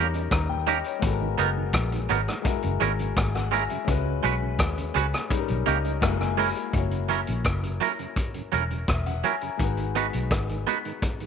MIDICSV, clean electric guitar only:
0, 0, Header, 1, 2, 480
1, 0, Start_track
1, 0, Tempo, 714286
1, 688, Time_signature, 4, 2, 24, 8
1, 7569, End_track
2, 0, Start_track
2, 0, Title_t, "Clean electric guitar"
2, 0, Program_c, 0, 27
2, 450, Note_on_c, 0, 58, 84
2, 454, Note_on_c, 0, 61, 90
2, 457, Note_on_c, 0, 67, 84
2, 461, Note_on_c, 0, 70, 96
2, 517, Note_off_c, 0, 58, 0
2, 519, Note_off_c, 0, 61, 0
2, 521, Note_off_c, 0, 67, 0
2, 523, Note_off_c, 0, 70, 0
2, 927, Note_on_c, 0, 54, 86
2, 933, Note_on_c, 0, 59, 90
2, 936, Note_on_c, 0, 63, 92
2, 940, Note_on_c, 0, 70, 97
2, 996, Note_off_c, 0, 54, 0
2, 999, Note_off_c, 0, 59, 0
2, 1000, Note_off_c, 0, 63, 0
2, 1002, Note_off_c, 0, 70, 0
2, 1408, Note_on_c, 0, 54, 92
2, 1413, Note_on_c, 0, 59, 107
2, 1416, Note_on_c, 0, 63, 105
2, 1419, Note_on_c, 0, 70, 98
2, 1476, Note_off_c, 0, 54, 0
2, 1478, Note_off_c, 0, 59, 0
2, 1480, Note_off_c, 0, 63, 0
2, 1481, Note_off_c, 0, 70, 0
2, 1885, Note_on_c, 0, 56, 98
2, 1888, Note_on_c, 0, 61, 97
2, 1893, Note_on_c, 0, 64, 104
2, 1896, Note_on_c, 0, 70, 107
2, 1954, Note_off_c, 0, 56, 0
2, 1956, Note_off_c, 0, 61, 0
2, 1958, Note_off_c, 0, 64, 0
2, 1960, Note_off_c, 0, 70, 0
2, 2363, Note_on_c, 0, 56, 92
2, 2369, Note_on_c, 0, 61, 92
2, 2372, Note_on_c, 0, 64, 93
2, 2376, Note_on_c, 0, 70, 98
2, 2433, Note_off_c, 0, 56, 0
2, 2436, Note_off_c, 0, 61, 0
2, 2437, Note_off_c, 0, 64, 0
2, 2439, Note_off_c, 0, 70, 0
2, 2844, Note_on_c, 0, 56, 82
2, 2848, Note_on_c, 0, 61, 85
2, 2853, Note_on_c, 0, 66, 85
2, 2856, Note_on_c, 0, 71, 89
2, 2913, Note_off_c, 0, 56, 0
2, 2915, Note_off_c, 0, 61, 0
2, 2918, Note_off_c, 0, 66, 0
2, 2919, Note_off_c, 0, 71, 0
2, 3325, Note_on_c, 0, 56, 89
2, 3330, Note_on_c, 0, 61, 95
2, 3334, Note_on_c, 0, 66, 90
2, 3337, Note_on_c, 0, 71, 103
2, 3394, Note_off_c, 0, 56, 0
2, 3396, Note_off_c, 0, 61, 0
2, 3398, Note_off_c, 0, 66, 0
2, 3400, Note_off_c, 0, 71, 0
2, 3805, Note_on_c, 0, 58, 93
2, 3811, Note_on_c, 0, 61, 89
2, 3814, Note_on_c, 0, 67, 98
2, 3817, Note_on_c, 0, 70, 85
2, 3874, Note_off_c, 0, 58, 0
2, 3876, Note_off_c, 0, 61, 0
2, 3878, Note_off_c, 0, 67, 0
2, 3879, Note_off_c, 0, 70, 0
2, 4284, Note_on_c, 0, 56, 84
2, 4289, Note_on_c, 0, 61, 81
2, 4293, Note_on_c, 0, 64, 96
2, 4297, Note_on_c, 0, 70, 88
2, 4353, Note_off_c, 0, 56, 0
2, 4356, Note_off_c, 0, 61, 0
2, 4357, Note_off_c, 0, 64, 0
2, 4359, Note_off_c, 0, 70, 0
2, 4763, Note_on_c, 0, 54, 76
2, 4768, Note_on_c, 0, 61, 86
2, 4772, Note_on_c, 0, 64, 90
2, 4776, Note_on_c, 0, 70, 82
2, 4833, Note_off_c, 0, 54, 0
2, 4835, Note_off_c, 0, 61, 0
2, 4837, Note_off_c, 0, 64, 0
2, 4839, Note_off_c, 0, 70, 0
2, 5246, Note_on_c, 0, 54, 79
2, 5252, Note_on_c, 0, 61, 78
2, 5254, Note_on_c, 0, 64, 88
2, 5259, Note_on_c, 0, 70, 98
2, 5314, Note_off_c, 0, 54, 0
2, 5317, Note_off_c, 0, 61, 0
2, 5318, Note_off_c, 0, 64, 0
2, 5320, Note_off_c, 0, 70, 0
2, 5726, Note_on_c, 0, 54, 79
2, 5731, Note_on_c, 0, 61, 83
2, 5734, Note_on_c, 0, 64, 84
2, 5738, Note_on_c, 0, 70, 91
2, 5794, Note_off_c, 0, 54, 0
2, 5797, Note_off_c, 0, 61, 0
2, 5799, Note_off_c, 0, 64, 0
2, 5800, Note_off_c, 0, 70, 0
2, 6208, Note_on_c, 0, 54, 74
2, 6213, Note_on_c, 0, 61, 82
2, 6217, Note_on_c, 0, 64, 82
2, 6220, Note_on_c, 0, 70, 82
2, 6276, Note_off_c, 0, 54, 0
2, 6278, Note_off_c, 0, 61, 0
2, 6280, Note_off_c, 0, 64, 0
2, 6282, Note_off_c, 0, 70, 0
2, 6689, Note_on_c, 0, 59, 76
2, 6694, Note_on_c, 0, 63, 88
2, 6698, Note_on_c, 0, 66, 86
2, 6701, Note_on_c, 0, 71, 84
2, 6756, Note_off_c, 0, 59, 0
2, 6759, Note_off_c, 0, 63, 0
2, 6761, Note_off_c, 0, 66, 0
2, 6762, Note_off_c, 0, 71, 0
2, 7170, Note_on_c, 0, 59, 78
2, 7174, Note_on_c, 0, 63, 81
2, 7177, Note_on_c, 0, 66, 87
2, 7181, Note_on_c, 0, 71, 92
2, 7237, Note_off_c, 0, 59, 0
2, 7239, Note_off_c, 0, 63, 0
2, 7240, Note_off_c, 0, 66, 0
2, 7243, Note_off_c, 0, 71, 0
2, 7569, End_track
0, 0, End_of_file